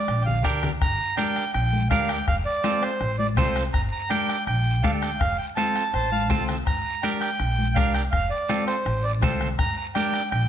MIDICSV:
0, 0, Header, 1, 7, 480
1, 0, Start_track
1, 0, Key_signature, -2, "minor"
1, 0, Tempo, 365631
1, 1067, Time_signature, 4, 2, 24, 8
1, 13765, End_track
2, 0, Start_track
2, 0, Title_t, "Accordion"
2, 0, Program_c, 0, 21
2, 0, Note_on_c, 0, 74, 78
2, 285, Note_on_c, 0, 79, 49
2, 300, Note_off_c, 0, 74, 0
2, 339, Note_on_c, 0, 77, 77
2, 346, Note_off_c, 0, 79, 0
2, 566, Note_off_c, 0, 77, 0
2, 577, Note_on_c, 0, 79, 78
2, 917, Note_off_c, 0, 79, 0
2, 1064, Note_on_c, 0, 82, 106
2, 1512, Note_off_c, 0, 82, 0
2, 1537, Note_on_c, 0, 79, 108
2, 1989, Note_off_c, 0, 79, 0
2, 2019, Note_on_c, 0, 79, 109
2, 2470, Note_off_c, 0, 79, 0
2, 2498, Note_on_c, 0, 77, 86
2, 2737, Note_on_c, 0, 79, 94
2, 2750, Note_off_c, 0, 77, 0
2, 2966, Note_off_c, 0, 79, 0
2, 2986, Note_on_c, 0, 77, 89
2, 3095, Note_off_c, 0, 77, 0
2, 3221, Note_on_c, 0, 74, 85
2, 3699, Note_on_c, 0, 72, 95
2, 3720, Note_off_c, 0, 74, 0
2, 4151, Note_off_c, 0, 72, 0
2, 4186, Note_on_c, 0, 74, 94
2, 4295, Note_off_c, 0, 74, 0
2, 4428, Note_on_c, 0, 72, 93
2, 4764, Note_off_c, 0, 72, 0
2, 4897, Note_on_c, 0, 82, 100
2, 5008, Note_off_c, 0, 82, 0
2, 5146, Note_on_c, 0, 82, 86
2, 5371, Note_off_c, 0, 82, 0
2, 5381, Note_on_c, 0, 79, 113
2, 5832, Note_off_c, 0, 79, 0
2, 5861, Note_on_c, 0, 79, 96
2, 6340, Note_on_c, 0, 77, 84
2, 6361, Note_off_c, 0, 79, 0
2, 6450, Note_off_c, 0, 77, 0
2, 6574, Note_on_c, 0, 79, 87
2, 6822, Note_on_c, 0, 77, 88
2, 6830, Note_off_c, 0, 79, 0
2, 7050, Note_off_c, 0, 77, 0
2, 7061, Note_on_c, 0, 79, 82
2, 7171, Note_off_c, 0, 79, 0
2, 7298, Note_on_c, 0, 81, 95
2, 8452, Note_off_c, 0, 81, 0
2, 8748, Note_on_c, 0, 82, 96
2, 9225, Note_on_c, 0, 79, 88
2, 9244, Note_off_c, 0, 82, 0
2, 9335, Note_off_c, 0, 79, 0
2, 9460, Note_on_c, 0, 79, 100
2, 10173, Note_on_c, 0, 77, 90
2, 10207, Note_off_c, 0, 79, 0
2, 10405, Note_off_c, 0, 77, 0
2, 10419, Note_on_c, 0, 79, 93
2, 10530, Note_off_c, 0, 79, 0
2, 10655, Note_on_c, 0, 77, 90
2, 10885, Note_off_c, 0, 77, 0
2, 10898, Note_on_c, 0, 74, 75
2, 11350, Note_off_c, 0, 74, 0
2, 11380, Note_on_c, 0, 72, 90
2, 11862, Note_on_c, 0, 74, 79
2, 11880, Note_off_c, 0, 72, 0
2, 11972, Note_off_c, 0, 74, 0
2, 12106, Note_on_c, 0, 72, 80
2, 12442, Note_off_c, 0, 72, 0
2, 12583, Note_on_c, 0, 82, 106
2, 12809, Note_off_c, 0, 82, 0
2, 12829, Note_on_c, 0, 82, 83
2, 12937, Note_off_c, 0, 82, 0
2, 13062, Note_on_c, 0, 79, 108
2, 13514, Note_off_c, 0, 79, 0
2, 13534, Note_on_c, 0, 79, 91
2, 13755, Note_off_c, 0, 79, 0
2, 13765, End_track
3, 0, Start_track
3, 0, Title_t, "Trumpet"
3, 0, Program_c, 1, 56
3, 7796, Note_on_c, 1, 72, 99
3, 8017, Note_off_c, 1, 72, 0
3, 8036, Note_on_c, 1, 77, 102
3, 8257, Note_off_c, 1, 77, 0
3, 8271, Note_on_c, 1, 72, 74
3, 8606, Note_off_c, 1, 72, 0
3, 13765, End_track
4, 0, Start_track
4, 0, Title_t, "Clean electric guitar"
4, 0, Program_c, 2, 27
4, 581, Note_on_c, 2, 62, 71
4, 592, Note_on_c, 2, 67, 53
4, 592, Note_on_c, 2, 70, 78
4, 921, Note_off_c, 2, 62, 0
4, 923, Note_off_c, 2, 67, 0
4, 926, Note_off_c, 2, 70, 0
4, 1543, Note_on_c, 2, 62, 74
4, 1556, Note_on_c, 2, 70, 74
4, 1557, Note_on_c, 2, 67, 49
4, 1883, Note_off_c, 2, 62, 0
4, 1885, Note_off_c, 2, 67, 0
4, 1888, Note_off_c, 2, 70, 0
4, 2508, Note_on_c, 2, 62, 70
4, 2518, Note_on_c, 2, 67, 57
4, 2519, Note_on_c, 2, 70, 80
4, 2844, Note_off_c, 2, 62, 0
4, 2847, Note_off_c, 2, 67, 0
4, 2850, Note_off_c, 2, 70, 0
4, 3464, Note_on_c, 2, 60, 72
4, 3471, Note_on_c, 2, 65, 71
4, 3478, Note_on_c, 2, 69, 72
4, 3803, Note_off_c, 2, 60, 0
4, 3806, Note_off_c, 2, 65, 0
4, 3808, Note_off_c, 2, 69, 0
4, 4425, Note_on_c, 2, 60, 74
4, 4433, Note_on_c, 2, 65, 74
4, 4439, Note_on_c, 2, 69, 86
4, 4764, Note_off_c, 2, 60, 0
4, 4767, Note_off_c, 2, 65, 0
4, 4770, Note_off_c, 2, 69, 0
4, 5386, Note_on_c, 2, 62, 66
4, 5396, Note_on_c, 2, 70, 77
4, 5397, Note_on_c, 2, 67, 51
4, 5725, Note_off_c, 2, 62, 0
4, 5726, Note_off_c, 2, 67, 0
4, 5729, Note_off_c, 2, 70, 0
4, 6350, Note_on_c, 2, 62, 61
4, 6359, Note_on_c, 2, 67, 55
4, 6360, Note_on_c, 2, 69, 80
4, 6688, Note_off_c, 2, 62, 0
4, 6690, Note_off_c, 2, 67, 0
4, 6692, Note_off_c, 2, 69, 0
4, 7314, Note_on_c, 2, 60, 67
4, 7323, Note_on_c, 2, 65, 62
4, 7329, Note_on_c, 2, 69, 78
4, 7649, Note_off_c, 2, 60, 0
4, 7653, Note_off_c, 2, 65, 0
4, 7656, Note_off_c, 2, 69, 0
4, 8268, Note_on_c, 2, 60, 85
4, 8280, Note_on_c, 2, 69, 100
4, 8281, Note_on_c, 2, 65, 60
4, 8607, Note_off_c, 2, 60, 0
4, 8610, Note_off_c, 2, 65, 0
4, 8612, Note_off_c, 2, 69, 0
4, 9234, Note_on_c, 2, 62, 60
4, 9245, Note_on_c, 2, 67, 65
4, 9249, Note_on_c, 2, 70, 84
4, 9570, Note_off_c, 2, 62, 0
4, 9572, Note_off_c, 2, 67, 0
4, 9576, Note_off_c, 2, 70, 0
4, 10189, Note_on_c, 2, 62, 68
4, 10196, Note_on_c, 2, 67, 63
4, 10202, Note_on_c, 2, 70, 85
4, 10526, Note_off_c, 2, 62, 0
4, 10530, Note_off_c, 2, 67, 0
4, 10533, Note_off_c, 2, 70, 0
4, 11149, Note_on_c, 2, 60, 68
4, 11158, Note_on_c, 2, 69, 84
4, 11159, Note_on_c, 2, 65, 63
4, 11487, Note_off_c, 2, 60, 0
4, 11488, Note_off_c, 2, 65, 0
4, 11490, Note_off_c, 2, 69, 0
4, 12114, Note_on_c, 2, 60, 75
4, 12117, Note_on_c, 2, 65, 64
4, 12128, Note_on_c, 2, 69, 75
4, 12448, Note_off_c, 2, 60, 0
4, 12450, Note_off_c, 2, 65, 0
4, 12453, Note_off_c, 2, 69, 0
4, 13069, Note_on_c, 2, 62, 70
4, 13082, Note_on_c, 2, 67, 52
4, 13084, Note_on_c, 2, 70, 69
4, 13406, Note_off_c, 2, 62, 0
4, 13409, Note_off_c, 2, 67, 0
4, 13412, Note_off_c, 2, 70, 0
4, 13765, End_track
5, 0, Start_track
5, 0, Title_t, "Upright bass"
5, 0, Program_c, 3, 32
5, 105, Note_on_c, 3, 34, 103
5, 588, Note_off_c, 3, 34, 0
5, 588, Note_on_c, 3, 38, 95
5, 972, Note_off_c, 3, 38, 0
5, 1069, Note_on_c, 3, 31, 78
5, 1261, Note_off_c, 3, 31, 0
5, 2030, Note_on_c, 3, 34, 96
5, 2508, Note_off_c, 3, 34, 0
5, 2508, Note_on_c, 3, 38, 92
5, 2892, Note_off_c, 3, 38, 0
5, 2986, Note_on_c, 3, 29, 87
5, 3179, Note_off_c, 3, 29, 0
5, 3947, Note_on_c, 3, 33, 99
5, 4427, Note_off_c, 3, 33, 0
5, 4427, Note_on_c, 3, 36, 98
5, 4812, Note_off_c, 3, 36, 0
5, 4909, Note_on_c, 3, 31, 84
5, 5101, Note_off_c, 3, 31, 0
5, 5869, Note_on_c, 3, 34, 96
5, 6354, Note_off_c, 3, 34, 0
5, 6354, Note_on_c, 3, 38, 96
5, 6737, Note_off_c, 3, 38, 0
5, 6836, Note_on_c, 3, 29, 81
5, 7026, Note_off_c, 3, 29, 0
5, 7792, Note_on_c, 3, 33, 93
5, 8274, Note_off_c, 3, 33, 0
5, 8274, Note_on_c, 3, 36, 84
5, 8657, Note_off_c, 3, 36, 0
5, 8753, Note_on_c, 3, 31, 73
5, 8944, Note_off_c, 3, 31, 0
5, 9712, Note_on_c, 3, 34, 106
5, 10191, Note_off_c, 3, 34, 0
5, 10191, Note_on_c, 3, 36, 90
5, 10575, Note_off_c, 3, 36, 0
5, 10670, Note_on_c, 3, 29, 75
5, 10862, Note_off_c, 3, 29, 0
5, 11628, Note_on_c, 3, 33, 105
5, 12110, Note_off_c, 3, 33, 0
5, 12110, Note_on_c, 3, 36, 101
5, 12494, Note_off_c, 3, 36, 0
5, 12589, Note_on_c, 3, 31, 85
5, 12781, Note_off_c, 3, 31, 0
5, 13550, Note_on_c, 3, 34, 97
5, 13765, Note_off_c, 3, 34, 0
5, 13765, End_track
6, 0, Start_track
6, 0, Title_t, "Two-headed folk drums"
6, 107, Note_on_c, 9, 37, 80
6, 239, Note_off_c, 9, 37, 0
6, 586, Note_on_c, 9, 36, 76
6, 586, Note_on_c, 9, 37, 85
6, 717, Note_off_c, 9, 37, 0
6, 718, Note_off_c, 9, 36, 0
6, 827, Note_on_c, 9, 37, 80
6, 958, Note_off_c, 9, 37, 0
6, 1067, Note_on_c, 9, 36, 89
6, 1071, Note_on_c, 9, 37, 97
6, 1198, Note_off_c, 9, 36, 0
6, 1202, Note_off_c, 9, 37, 0
6, 1542, Note_on_c, 9, 37, 70
6, 1674, Note_off_c, 9, 37, 0
6, 1788, Note_on_c, 9, 37, 68
6, 1919, Note_off_c, 9, 37, 0
6, 2027, Note_on_c, 9, 37, 81
6, 2158, Note_off_c, 9, 37, 0
6, 2504, Note_on_c, 9, 37, 87
6, 2507, Note_on_c, 9, 36, 86
6, 2635, Note_off_c, 9, 37, 0
6, 2638, Note_off_c, 9, 36, 0
6, 2745, Note_on_c, 9, 37, 90
6, 2877, Note_off_c, 9, 37, 0
6, 2987, Note_on_c, 9, 36, 89
6, 2989, Note_on_c, 9, 37, 90
6, 3118, Note_off_c, 9, 36, 0
6, 3120, Note_off_c, 9, 37, 0
6, 3466, Note_on_c, 9, 37, 76
6, 3597, Note_off_c, 9, 37, 0
6, 3712, Note_on_c, 9, 37, 83
6, 3843, Note_off_c, 9, 37, 0
6, 3946, Note_on_c, 9, 37, 71
6, 4077, Note_off_c, 9, 37, 0
6, 4425, Note_on_c, 9, 37, 90
6, 4427, Note_on_c, 9, 36, 89
6, 4557, Note_off_c, 9, 37, 0
6, 4559, Note_off_c, 9, 36, 0
6, 4672, Note_on_c, 9, 37, 88
6, 4803, Note_off_c, 9, 37, 0
6, 4909, Note_on_c, 9, 36, 90
6, 4909, Note_on_c, 9, 37, 91
6, 5040, Note_off_c, 9, 36, 0
6, 5041, Note_off_c, 9, 37, 0
6, 5391, Note_on_c, 9, 37, 79
6, 5522, Note_off_c, 9, 37, 0
6, 5635, Note_on_c, 9, 37, 75
6, 5767, Note_off_c, 9, 37, 0
6, 5873, Note_on_c, 9, 37, 76
6, 6005, Note_off_c, 9, 37, 0
6, 6354, Note_on_c, 9, 36, 79
6, 6360, Note_on_c, 9, 37, 82
6, 6485, Note_off_c, 9, 36, 0
6, 6491, Note_off_c, 9, 37, 0
6, 6597, Note_on_c, 9, 37, 90
6, 6728, Note_off_c, 9, 37, 0
6, 6835, Note_on_c, 9, 36, 90
6, 6838, Note_on_c, 9, 37, 101
6, 6966, Note_off_c, 9, 36, 0
6, 6969, Note_off_c, 9, 37, 0
6, 7314, Note_on_c, 9, 37, 73
6, 7445, Note_off_c, 9, 37, 0
6, 7557, Note_on_c, 9, 37, 77
6, 7688, Note_off_c, 9, 37, 0
6, 7797, Note_on_c, 9, 37, 70
6, 7928, Note_off_c, 9, 37, 0
6, 8275, Note_on_c, 9, 36, 83
6, 8278, Note_on_c, 9, 37, 89
6, 8406, Note_off_c, 9, 36, 0
6, 8409, Note_off_c, 9, 37, 0
6, 8516, Note_on_c, 9, 37, 85
6, 8647, Note_off_c, 9, 37, 0
6, 8754, Note_on_c, 9, 36, 88
6, 8755, Note_on_c, 9, 37, 87
6, 8885, Note_off_c, 9, 36, 0
6, 8887, Note_off_c, 9, 37, 0
6, 9233, Note_on_c, 9, 37, 77
6, 9364, Note_off_c, 9, 37, 0
6, 9474, Note_on_c, 9, 37, 82
6, 9605, Note_off_c, 9, 37, 0
6, 9709, Note_on_c, 9, 37, 81
6, 9840, Note_off_c, 9, 37, 0
6, 10189, Note_on_c, 9, 37, 89
6, 10191, Note_on_c, 9, 36, 91
6, 10320, Note_off_c, 9, 37, 0
6, 10322, Note_off_c, 9, 36, 0
6, 10431, Note_on_c, 9, 37, 83
6, 10562, Note_off_c, 9, 37, 0
6, 10669, Note_on_c, 9, 36, 84
6, 10670, Note_on_c, 9, 37, 95
6, 10801, Note_off_c, 9, 36, 0
6, 10801, Note_off_c, 9, 37, 0
6, 11152, Note_on_c, 9, 37, 70
6, 11284, Note_off_c, 9, 37, 0
6, 11392, Note_on_c, 9, 37, 78
6, 11523, Note_off_c, 9, 37, 0
6, 11633, Note_on_c, 9, 37, 76
6, 11764, Note_off_c, 9, 37, 0
6, 12109, Note_on_c, 9, 36, 82
6, 12109, Note_on_c, 9, 37, 88
6, 12240, Note_off_c, 9, 36, 0
6, 12241, Note_off_c, 9, 37, 0
6, 12350, Note_on_c, 9, 37, 87
6, 12481, Note_off_c, 9, 37, 0
6, 12588, Note_on_c, 9, 36, 92
6, 12588, Note_on_c, 9, 37, 99
6, 12719, Note_off_c, 9, 37, 0
6, 12720, Note_off_c, 9, 36, 0
6, 13063, Note_on_c, 9, 37, 71
6, 13195, Note_off_c, 9, 37, 0
6, 13308, Note_on_c, 9, 37, 76
6, 13439, Note_off_c, 9, 37, 0
6, 13552, Note_on_c, 9, 37, 85
6, 13683, Note_off_c, 9, 37, 0
6, 13765, End_track
7, 0, Start_track
7, 0, Title_t, "Drums"
7, 106, Note_on_c, 9, 74, 62
7, 237, Note_off_c, 9, 74, 0
7, 349, Note_on_c, 9, 64, 85
7, 481, Note_off_c, 9, 64, 0
7, 586, Note_on_c, 9, 73, 65
7, 717, Note_off_c, 9, 73, 0
7, 823, Note_on_c, 9, 73, 70
7, 833, Note_on_c, 9, 64, 110
7, 954, Note_off_c, 9, 73, 0
7, 964, Note_off_c, 9, 64, 0
7, 1063, Note_on_c, 9, 74, 66
7, 1195, Note_off_c, 9, 74, 0
7, 1545, Note_on_c, 9, 73, 71
7, 1549, Note_on_c, 9, 63, 72
7, 1676, Note_off_c, 9, 73, 0
7, 1680, Note_off_c, 9, 63, 0
7, 1788, Note_on_c, 9, 73, 57
7, 1919, Note_off_c, 9, 73, 0
7, 2024, Note_on_c, 9, 74, 70
7, 2155, Note_off_c, 9, 74, 0
7, 2270, Note_on_c, 9, 63, 64
7, 2401, Note_off_c, 9, 63, 0
7, 2504, Note_on_c, 9, 73, 64
7, 2507, Note_on_c, 9, 63, 75
7, 2635, Note_off_c, 9, 73, 0
7, 2638, Note_off_c, 9, 63, 0
7, 2748, Note_on_c, 9, 73, 72
7, 2879, Note_off_c, 9, 73, 0
7, 2985, Note_on_c, 9, 74, 76
7, 3116, Note_off_c, 9, 74, 0
7, 3469, Note_on_c, 9, 63, 73
7, 3469, Note_on_c, 9, 73, 67
7, 3600, Note_off_c, 9, 63, 0
7, 3600, Note_off_c, 9, 73, 0
7, 3711, Note_on_c, 9, 73, 68
7, 3843, Note_off_c, 9, 73, 0
7, 3948, Note_on_c, 9, 74, 70
7, 4080, Note_off_c, 9, 74, 0
7, 4191, Note_on_c, 9, 63, 63
7, 4322, Note_off_c, 9, 63, 0
7, 4429, Note_on_c, 9, 73, 67
7, 4432, Note_on_c, 9, 63, 78
7, 4432, Note_on_c, 9, 64, 81
7, 4560, Note_off_c, 9, 73, 0
7, 4564, Note_off_c, 9, 63, 0
7, 4564, Note_off_c, 9, 64, 0
7, 4667, Note_on_c, 9, 73, 73
7, 4798, Note_off_c, 9, 73, 0
7, 4908, Note_on_c, 9, 74, 71
7, 5039, Note_off_c, 9, 74, 0
7, 5389, Note_on_c, 9, 73, 65
7, 5393, Note_on_c, 9, 63, 69
7, 5520, Note_off_c, 9, 73, 0
7, 5524, Note_off_c, 9, 63, 0
7, 5631, Note_on_c, 9, 73, 59
7, 5762, Note_off_c, 9, 73, 0
7, 5871, Note_on_c, 9, 74, 70
7, 6002, Note_off_c, 9, 74, 0
7, 6348, Note_on_c, 9, 73, 68
7, 6355, Note_on_c, 9, 63, 85
7, 6480, Note_off_c, 9, 73, 0
7, 6486, Note_off_c, 9, 63, 0
7, 6592, Note_on_c, 9, 73, 69
7, 6724, Note_off_c, 9, 73, 0
7, 6831, Note_on_c, 9, 74, 70
7, 6962, Note_off_c, 9, 74, 0
7, 7315, Note_on_c, 9, 63, 80
7, 7316, Note_on_c, 9, 73, 64
7, 7446, Note_off_c, 9, 63, 0
7, 7447, Note_off_c, 9, 73, 0
7, 7554, Note_on_c, 9, 73, 65
7, 7685, Note_off_c, 9, 73, 0
7, 7799, Note_on_c, 9, 74, 75
7, 7930, Note_off_c, 9, 74, 0
7, 8036, Note_on_c, 9, 63, 55
7, 8167, Note_off_c, 9, 63, 0
7, 8272, Note_on_c, 9, 73, 74
7, 8277, Note_on_c, 9, 63, 82
7, 8277, Note_on_c, 9, 64, 77
7, 8403, Note_off_c, 9, 73, 0
7, 8408, Note_off_c, 9, 63, 0
7, 8408, Note_off_c, 9, 64, 0
7, 8508, Note_on_c, 9, 73, 67
7, 8516, Note_on_c, 9, 64, 70
7, 8639, Note_off_c, 9, 73, 0
7, 8647, Note_off_c, 9, 64, 0
7, 8754, Note_on_c, 9, 74, 74
7, 8885, Note_off_c, 9, 74, 0
7, 9229, Note_on_c, 9, 73, 74
7, 9240, Note_on_c, 9, 63, 69
7, 9361, Note_off_c, 9, 73, 0
7, 9371, Note_off_c, 9, 63, 0
7, 9469, Note_on_c, 9, 73, 60
7, 9600, Note_off_c, 9, 73, 0
7, 9707, Note_on_c, 9, 74, 70
7, 9838, Note_off_c, 9, 74, 0
7, 9958, Note_on_c, 9, 63, 62
7, 10089, Note_off_c, 9, 63, 0
7, 10187, Note_on_c, 9, 73, 74
7, 10195, Note_on_c, 9, 63, 70
7, 10318, Note_off_c, 9, 73, 0
7, 10326, Note_off_c, 9, 63, 0
7, 10422, Note_on_c, 9, 73, 77
7, 10553, Note_off_c, 9, 73, 0
7, 10658, Note_on_c, 9, 74, 63
7, 10790, Note_off_c, 9, 74, 0
7, 11144, Note_on_c, 9, 73, 67
7, 11152, Note_on_c, 9, 63, 85
7, 11275, Note_off_c, 9, 73, 0
7, 11284, Note_off_c, 9, 63, 0
7, 11385, Note_on_c, 9, 73, 59
7, 11517, Note_off_c, 9, 73, 0
7, 11627, Note_on_c, 9, 74, 78
7, 11758, Note_off_c, 9, 74, 0
7, 12106, Note_on_c, 9, 73, 66
7, 12115, Note_on_c, 9, 63, 74
7, 12115, Note_on_c, 9, 64, 83
7, 12237, Note_off_c, 9, 73, 0
7, 12247, Note_off_c, 9, 63, 0
7, 12247, Note_off_c, 9, 64, 0
7, 12349, Note_on_c, 9, 73, 67
7, 12352, Note_on_c, 9, 64, 68
7, 12481, Note_off_c, 9, 73, 0
7, 12483, Note_off_c, 9, 64, 0
7, 12586, Note_on_c, 9, 74, 75
7, 12717, Note_off_c, 9, 74, 0
7, 13067, Note_on_c, 9, 73, 64
7, 13074, Note_on_c, 9, 63, 76
7, 13198, Note_off_c, 9, 73, 0
7, 13205, Note_off_c, 9, 63, 0
7, 13307, Note_on_c, 9, 73, 68
7, 13438, Note_off_c, 9, 73, 0
7, 13547, Note_on_c, 9, 74, 75
7, 13679, Note_off_c, 9, 74, 0
7, 13765, End_track
0, 0, End_of_file